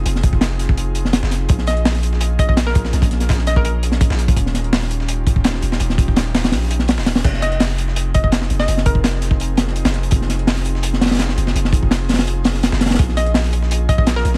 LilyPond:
<<
  \new Staff \with { instrumentName = "Synth pluck" } { \time 4/4 \key f \minor \tempo 4 = 167 r1 | r8 ees''8 r4. ees''16 ees''16 r16 bes'8. | r4. ees''16 bes'16 bes'16 r4. r16 | r1 |
r1 | r8 ees''8 r4. ees''16 ees''16 r8. ees''16~ | ees''16 r16 bes'4. r2 | r1 |
r1 | r8 ees''8 r4. ees''16 ees''16 r16 bes'8. | }
  \new Staff \with { instrumentName = "Analog synth pad" } { \time 4/4 \key f \minor << { <f' aes'>1~ | <f' aes'>1~ | <f' aes'>1 | <f' g'>1~ |
<f' g'>1 | <f' aes'>1~ | <f' aes'>1~ | <f' aes'>1~ |
<f' aes'>1~ | <f' aes'>1 | } \\ { <c' ees'>1 | <bes des'>1~ | <bes des'>1 | ees'1~ |
ees'1 | <c' ees'>1~ | <c' ees'>1~ | <c' ees'>1~ |
<c' ees'>1 | <bes des'>1 | } >> }
  \new Staff \with { instrumentName = "808-style bass" } { \clef bass \time 4/4 \key f \minor f,,2.~ f,,16 f,,8. | bes,,2.~ bes,,8 bes,,8 | bes,,2.~ bes,,16 bes,,8. | ees,,2.~ ees,,8 ees,,8 |
ees,,2 bes,,4~ bes,,16 ees,,8. | f,,2.~ f,,8 f,,8 | f,,2.~ f,,16 f,,8. | f,,2.~ f,,8 f,,8 |
f,,2.~ f,,16 f,,8. | bes,,2.~ bes,,8 bes,,8 | }
  \new DrumStaff \with { instrumentName = "Drums" } \drummode { \time 4/4 hh16 sn16 <hh bd>16 bd16 <hh hho sn>8 <hh sn>16 bd16 hh8 hh16 sn16 <hh sn>16 sn16 <hh sn>8 | <hh bd>16 sn16 <hh sn>16 hh16 <hh hho sn>16 <hh sn>16 hh16 sn16 hh8 <hh bd>16 bd16 <hh sn>16 sn16 <hh bd>16 sn16 | <hh sn>16 <hh bd>16 <hh sn>16 <hh sn>16 <hh hho bd sn>16 sn16 <hh sn>16 bd16 hh8 hh16 sn16 <hh bd>16 sn16 hh16 <hh bd>16 | <hh bd>16 sn16 <hh sn>16 hh16 <hh hho sn>16 <hh sn>16 hh16 sn16 hh8 <hh bd>16 bd16 <hh sn>16 sn16 hh16 sn16 |
hh16 sn16 <hh bd>16 bd16 <hh hho sn>8 <hh hho sn>16 <hh hho sn>16 <hh hho sn>16 sn16 hh16 sn16 <hh hho sn>16 sn16 <hh hho sn>16 <hho sn>16 | <cymc hh bd>16 sn16 <hh sn>16 hh16 <hh hho sn>16 <hh sn>16 hh16 sn16 hh8 <hh bd>16 bd16 <hh sn>16 sn16 hh16 sn16 | hh16 sn16 <hh bd>16 bd16 <hh hho sn>8 <hh sn>16 bd16 hh8 <hh sn>16 sn16 hh16 <hh sn>16 <hh sn>16 hh16 | <hh bd>16 sn16 <hh sn>16 hh16 <hh hho sn>16 <hh sn>16 hh16 sn16 hh16 sn16 <hh hho sn>32 <hho sn>32 <hho sn>32 <hho sn>32 <hh sn>16 sn16 hh16 sn16 |
hh16 sn16 <hh bd>16 bd16 <hh hho sn>8 <hh hho sn>32 <hho sn>32 <hho sn>16 hh8 <hh hho sn>16 sn16 <hh sn>16 sn16 <hh hho sn>32 <hho sn>32 <hho sn>32 <hho sn>32 | <hh bd>16 sn16 <hh sn>16 hh16 <hh hho sn>16 <hh sn>16 hh16 sn16 hh8 <hh bd>16 bd16 <hh sn>16 sn16 hh16 sn16 | }
>>